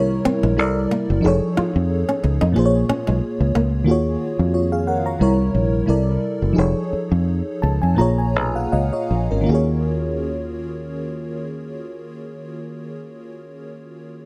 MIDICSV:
0, 0, Header, 1, 6, 480
1, 0, Start_track
1, 0, Key_signature, -6, "minor"
1, 0, Tempo, 660066
1, 887, Time_signature, 4, 2, 24, 8
1, 3768, Tempo, 688073
1, 5208, Tempo, 740741
1, 6648, Tempo, 776197
1, 9608, End_track
2, 0, Start_track
2, 0, Title_t, "FM electric piano"
2, 0, Program_c, 0, 5
2, 0, Note_on_c, 0, 48, 70
2, 0, Note_on_c, 0, 55, 68
2, 0, Note_on_c, 0, 64, 69
2, 0, Note_on_c, 0, 70, 65
2, 0, Note_on_c, 0, 73, 84
2, 63, Control_c, 0, 64, 127
2, 404, Note_off_c, 0, 48, 0
2, 409, Note_off_c, 0, 55, 0
2, 412, Note_on_c, 0, 48, 70
2, 415, Note_off_c, 0, 64, 0
2, 416, Control_c, 0, 64, 0
2, 418, Note_off_c, 0, 70, 0
2, 418, Note_on_c, 0, 55, 60
2, 421, Note_off_c, 0, 73, 0
2, 423, Note_on_c, 0, 64, 68
2, 427, Note_on_c, 0, 69, 59
2, 432, Note_on_c, 0, 70, 67
2, 438, Note_on_c, 0, 74, 77
2, 533, Control_c, 0, 64, 127
2, 879, Note_on_c, 0, 53, 72
2, 890, Note_off_c, 0, 48, 0
2, 890, Note_on_c, 0, 63, 65
2, 892, Note_off_c, 0, 55, 0
2, 895, Note_off_c, 0, 64, 0
2, 896, Control_c, 0, 64, 0
2, 897, Note_off_c, 0, 69, 0
2, 899, Note_off_c, 0, 70, 0
2, 902, Note_off_c, 0, 74, 0
2, 904, Note_on_c, 0, 68, 65
2, 914, Note_on_c, 0, 69, 59
2, 926, Note_on_c, 0, 73, 78
2, 1032, Control_c, 0, 64, 127
2, 1823, Note_off_c, 0, 53, 0
2, 1828, Note_off_c, 0, 63, 0
2, 1834, Note_on_c, 0, 46, 68
2, 1836, Note_off_c, 0, 68, 0
2, 1840, Note_off_c, 0, 69, 0
2, 1847, Note_off_c, 0, 73, 0
2, 1848, Note_on_c, 0, 58, 72
2, 1856, Control_c, 0, 64, 0
2, 1860, Note_on_c, 0, 65, 63
2, 1871, Note_on_c, 0, 68, 66
2, 1883, Note_on_c, 0, 72, 69
2, 1916, Note_off_c, 0, 72, 0
2, 1931, Note_on_c, 0, 73, 79
2, 1987, Control_c, 0, 64, 127
2, 2780, Note_off_c, 0, 46, 0
2, 2787, Note_off_c, 0, 58, 0
2, 2793, Note_off_c, 0, 65, 0
2, 2795, Note_on_c, 0, 51, 66
2, 2799, Note_off_c, 0, 68, 0
2, 2806, Note_on_c, 0, 58, 66
2, 2816, Control_c, 0, 64, 0
2, 2817, Note_on_c, 0, 65, 65
2, 2825, Note_on_c, 0, 66, 58
2, 2829, Note_off_c, 0, 73, 0
2, 2834, Note_on_c, 0, 68, 64
2, 2845, Note_on_c, 0, 73, 74
2, 2954, Control_c, 0, 64, 127
2, 3282, Note_off_c, 0, 65, 0
2, 3286, Note_off_c, 0, 66, 0
2, 3291, Note_off_c, 0, 68, 0
2, 3294, Note_off_c, 0, 73, 0
2, 3302, Note_on_c, 0, 73, 54
2, 3305, Note_on_c, 0, 65, 44
2, 3420, Note_off_c, 0, 73, 0
2, 3422, Note_off_c, 0, 65, 0
2, 3434, Note_on_c, 0, 77, 59
2, 3438, Note_on_c, 0, 68, 50
2, 3530, Note_off_c, 0, 77, 0
2, 3532, Note_off_c, 0, 68, 0
2, 3544, Note_on_c, 0, 78, 56
2, 3550, Note_on_c, 0, 70, 49
2, 3663, Note_off_c, 0, 78, 0
2, 3666, Note_off_c, 0, 70, 0
2, 3678, Note_on_c, 0, 82, 51
2, 3682, Note_on_c, 0, 73, 46
2, 3746, Note_off_c, 0, 51, 0
2, 3752, Note_off_c, 0, 58, 0
2, 3776, Note_on_c, 0, 48, 71
2, 3781, Control_c, 0, 64, 0
2, 3782, Note_on_c, 0, 55, 63
2, 3788, Note_on_c, 0, 64, 67
2, 3791, Note_off_c, 0, 73, 0
2, 3794, Note_on_c, 0, 70, 64
2, 3800, Note_on_c, 0, 73, 85
2, 3896, Note_off_c, 0, 82, 0
2, 3910, Control_c, 0, 64, 127
2, 4234, Note_off_c, 0, 48, 0
2, 4240, Note_off_c, 0, 55, 0
2, 4242, Note_on_c, 0, 48, 66
2, 4244, Note_off_c, 0, 64, 0
2, 4249, Note_on_c, 0, 55, 64
2, 4252, Control_c, 0, 64, 0
2, 4253, Note_off_c, 0, 70, 0
2, 4253, Note_on_c, 0, 64, 61
2, 4256, Note_off_c, 0, 73, 0
2, 4259, Note_on_c, 0, 69, 57
2, 4263, Note_on_c, 0, 70, 61
2, 4268, Note_on_c, 0, 74, 72
2, 4385, Control_c, 0, 64, 127
2, 4709, Note_on_c, 0, 53, 65
2, 4720, Note_on_c, 0, 63, 58
2, 4721, Note_off_c, 0, 48, 0
2, 4725, Note_off_c, 0, 55, 0
2, 4727, Note_off_c, 0, 64, 0
2, 4730, Note_off_c, 0, 69, 0
2, 4731, Control_c, 0, 64, 0
2, 4731, Note_on_c, 0, 68, 60
2, 4732, Note_off_c, 0, 70, 0
2, 4734, Note_off_c, 0, 74, 0
2, 4744, Note_on_c, 0, 69, 62
2, 4754, Note_on_c, 0, 73, 73
2, 4839, Control_c, 0, 64, 127
2, 5452, Note_on_c, 0, 81, 55
2, 5566, Note_off_c, 0, 81, 0
2, 5578, Note_on_c, 0, 80, 57
2, 5652, Note_off_c, 0, 53, 0
2, 5657, Note_off_c, 0, 63, 0
2, 5662, Note_off_c, 0, 68, 0
2, 5662, Note_on_c, 0, 46, 69
2, 5669, Note_off_c, 0, 69, 0
2, 5673, Note_off_c, 0, 73, 0
2, 5673, Note_off_c, 0, 80, 0
2, 5673, Note_on_c, 0, 58, 63
2, 5684, Note_on_c, 0, 65, 65
2, 5684, Note_on_c, 0, 82, 65
2, 5686, Control_c, 0, 64, 0
2, 5694, Note_on_c, 0, 68, 63
2, 5705, Note_on_c, 0, 73, 76
2, 5789, Control_c, 0, 64, 127
2, 5801, Note_off_c, 0, 82, 0
2, 5816, Note_on_c, 0, 80, 59
2, 5911, Note_off_c, 0, 80, 0
2, 5913, Note_off_c, 0, 65, 0
2, 5918, Note_off_c, 0, 68, 0
2, 5924, Note_off_c, 0, 73, 0
2, 6057, Note_on_c, 0, 77, 52
2, 6057, Note_on_c, 0, 78, 51
2, 6061, Note_on_c, 0, 68, 46
2, 6153, Note_off_c, 0, 78, 0
2, 6156, Note_off_c, 0, 77, 0
2, 6157, Note_off_c, 0, 68, 0
2, 6165, Note_on_c, 0, 77, 58
2, 6167, Note_on_c, 0, 75, 54
2, 6285, Note_off_c, 0, 77, 0
2, 6288, Note_off_c, 0, 75, 0
2, 6297, Note_on_c, 0, 75, 53
2, 6298, Note_on_c, 0, 73, 53
2, 6303, Note_on_c, 0, 65, 48
2, 6529, Note_off_c, 0, 73, 0
2, 6531, Note_off_c, 0, 65, 0
2, 6545, Note_on_c, 0, 70, 48
2, 6549, Note_on_c, 0, 61, 44
2, 6611, Note_on_c, 0, 51, 67
2, 6621, Note_off_c, 0, 58, 0
2, 6623, Note_off_c, 0, 46, 0
2, 6629, Note_off_c, 0, 75, 0
2, 6629, Note_on_c, 0, 58, 63
2, 6646, Note_on_c, 0, 65, 59
2, 6657, Control_c, 0, 64, 0
2, 6664, Note_on_c, 0, 66, 59
2, 6679, Note_on_c, 0, 68, 61
2, 6696, Note_on_c, 0, 73, 69
2, 6759, Control_c, 0, 64, 127
2, 6773, Note_off_c, 0, 70, 0
2, 6775, Note_off_c, 0, 61, 0
2, 9101, Note_off_c, 0, 51, 0
2, 9118, Note_off_c, 0, 58, 0
2, 9135, Note_off_c, 0, 65, 0
2, 9153, Note_off_c, 0, 66, 0
2, 9168, Note_off_c, 0, 68, 0
2, 9185, Note_off_c, 0, 73, 0
2, 9608, End_track
3, 0, Start_track
3, 0, Title_t, "Nylon-string guitar"
3, 0, Program_c, 1, 24
3, 183, Note_on_c, 1, 60, 80
3, 281, Note_off_c, 1, 60, 0
3, 315, Note_on_c, 1, 56, 65
3, 394, Note_off_c, 1, 56, 0
3, 664, Note_on_c, 1, 58, 68
3, 761, Note_off_c, 1, 58, 0
3, 1144, Note_on_c, 1, 65, 69
3, 1241, Note_off_c, 1, 65, 0
3, 1517, Note_on_c, 1, 61, 60
3, 1595, Note_off_c, 1, 61, 0
3, 1754, Note_on_c, 1, 63, 70
3, 1833, Note_off_c, 1, 63, 0
3, 2105, Note_on_c, 1, 61, 78
3, 2201, Note_off_c, 1, 61, 0
3, 2234, Note_on_c, 1, 56, 62
3, 2313, Note_off_c, 1, 56, 0
3, 2583, Note_on_c, 1, 58, 68
3, 2680, Note_off_c, 1, 58, 0
3, 9608, End_track
4, 0, Start_track
4, 0, Title_t, "Fingered electric bass"
4, 0, Program_c, 2, 33
4, 0, Note_on_c, 2, 36, 91
4, 146, Note_off_c, 2, 36, 0
4, 317, Note_on_c, 2, 34, 80
4, 428, Note_off_c, 2, 34, 0
4, 428, Note_on_c, 2, 36, 75
4, 625, Note_off_c, 2, 36, 0
4, 800, Note_on_c, 2, 30, 78
4, 884, Note_off_c, 2, 30, 0
4, 908, Note_on_c, 2, 29, 90
4, 1012, Note_off_c, 2, 29, 0
4, 1278, Note_on_c, 2, 41, 84
4, 1475, Note_off_c, 2, 41, 0
4, 1631, Note_on_c, 2, 37, 84
4, 1733, Note_off_c, 2, 37, 0
4, 1761, Note_on_c, 2, 41, 85
4, 1844, Note_off_c, 2, 41, 0
4, 1871, Note_on_c, 2, 34, 88
4, 2066, Note_off_c, 2, 34, 0
4, 2243, Note_on_c, 2, 35, 71
4, 2325, Note_off_c, 2, 35, 0
4, 2476, Note_on_c, 2, 37, 78
4, 2561, Note_off_c, 2, 37, 0
4, 2586, Note_on_c, 2, 37, 75
4, 2824, Note_off_c, 2, 37, 0
4, 2824, Note_on_c, 2, 39, 89
4, 3022, Note_off_c, 2, 39, 0
4, 3195, Note_on_c, 2, 41, 71
4, 3750, Note_off_c, 2, 41, 0
4, 3788, Note_on_c, 2, 36, 84
4, 3982, Note_off_c, 2, 36, 0
4, 4022, Note_on_c, 2, 34, 82
4, 4218, Note_off_c, 2, 34, 0
4, 4260, Note_on_c, 2, 36, 71
4, 4457, Note_off_c, 2, 36, 0
4, 4634, Note_on_c, 2, 30, 70
4, 4718, Note_off_c, 2, 30, 0
4, 4745, Note_on_c, 2, 29, 91
4, 4849, Note_off_c, 2, 29, 0
4, 5117, Note_on_c, 2, 41, 79
4, 5314, Note_off_c, 2, 41, 0
4, 5459, Note_on_c, 2, 37, 75
4, 5562, Note_off_c, 2, 37, 0
4, 5586, Note_on_c, 2, 41, 75
4, 5670, Note_off_c, 2, 41, 0
4, 5693, Note_on_c, 2, 34, 88
4, 5930, Note_off_c, 2, 34, 0
4, 5930, Note_on_c, 2, 35, 81
4, 6130, Note_off_c, 2, 35, 0
4, 6170, Note_on_c, 2, 37, 67
4, 6278, Note_off_c, 2, 37, 0
4, 6414, Note_on_c, 2, 34, 71
4, 6525, Note_off_c, 2, 34, 0
4, 6548, Note_on_c, 2, 32, 66
4, 6640, Note_off_c, 2, 32, 0
4, 6662, Note_on_c, 2, 39, 78
4, 9151, Note_off_c, 2, 39, 0
4, 9608, End_track
5, 0, Start_track
5, 0, Title_t, "Muted fingered electric bass strokes"
5, 188, Note_on_c, 9, 29, 44
5, 261, Note_off_c, 9, 29, 0
5, 1152, Note_on_c, 9, 29, 44
5, 1225, Note_off_c, 9, 29, 0
5, 2107, Note_on_c, 9, 29, 44
5, 2180, Note_off_c, 9, 29, 0
5, 4988, Note_on_c, 9, 29, 42
5, 5057, Note_off_c, 9, 29, 0
5, 9608, End_track
6, 0, Start_track
6, 0, Title_t, "Muted nylon-string guitar strokes"
6, 1626, Note_on_c, 9, 29, 35
6, 1698, Note_off_c, 9, 29, 0
6, 1862, Note_on_c, 9, 29, 39
6, 1935, Note_off_c, 9, 29, 0
6, 9608, End_track
0, 0, End_of_file